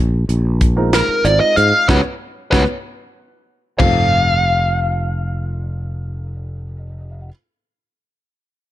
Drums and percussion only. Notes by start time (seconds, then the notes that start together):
0.29 closed hi-hat
0.61 kick, closed hi-hat
0.93 snare, closed hi-hat
1.25 closed hi-hat
1.57 closed hi-hat
1.89 kick, snare
2.53 kick, snare
3.80 kick, floor tom, china